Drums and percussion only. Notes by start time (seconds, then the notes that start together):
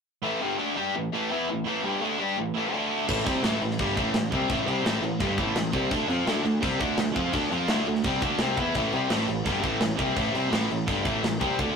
3.08 kick, crash
3.27 kick, crash
3.44 snare, crash
3.62 crash
3.71 snare
3.79 kick, crash
3.97 kick, crash
4.14 snare, crash
4.32 kick, crash
4.49 kick, crash
4.68 crash
4.86 snare, crash
5.04 crash
5.20 kick, crash
5.38 kick, crash
5.56 snare, crash
5.73 kick, crash
5.91 kick, crash
6.10 crash
6.27 snare, crash
6.45 crash
6.63 kick, crash
6.81 kick, crash
6.98 snare, crash
7.16 kick, crash
7.33 kick, crash
7.52 crash
7.68 snare, crash
7.86 crash
7.95 snare
8.04 kick, crash
8.21 kick, snare, crash
8.39 snare, crash
8.56 kick, crash
8.74 kick, crash
8.92 crash
9.10 snare, crash
9.28 crash
9.45 kick, crash
9.63 kick, crash
9.81 snare, crash
9.98 kick, crash
10.17 kick, crash
10.35 crash
10.53 snare, crash
10.71 crash
10.88 kick, crash
11.05 kick, crash
11.24 snare, crash
11.41 kick, crash
11.59 kick, crash